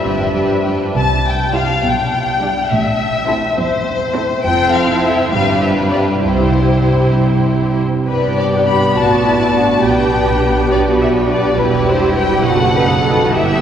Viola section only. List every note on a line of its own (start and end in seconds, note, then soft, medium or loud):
0.03 0.32 G3 soft
0.03 0.32 D4 soft
0.33 0.64 G3 soft
0.33 0.63 D4 soft
0.64 0.95 G3 soft
0.64 0.95 D4 soft
1.54 1.76 G3 soft
1.54 1.76 E4 soft
2.42 2.64 G3 medium
2.42 2.64 D4 soft
3.28 3.50 C4 soft
3.28 3.50 E4 medium
4.14 4.36 C4 medium
4.14 4.37 E4 medium
4.44 5.28 C4 medium
4.44 4.85 F4 soft
4.87 5.32 E4 soft
5.32 6.22 G3 soft
5.32 6.23 D4 soft
6.24 7.84 G3 soft
6.24 7.84 E4 soft
8.06 9.80 B3 soft
8.06 8.92 D4 soft
8.96 9.84 F#4 soft
9.83 11.55 B3 soft
9.83 10.71 G4 soft
10.72 11.59 F#4 soft
11.59 12.46 G3 soft
11.59 12.46 E4 soft
12.46 13.34 F#3 soft
12.46 12.55 D#4 soft
12.76 13.04 D#4 medium
13.05 13.33 D#4 soft
13.34 13.61 B3 soft
13.34 13.61 E4 soft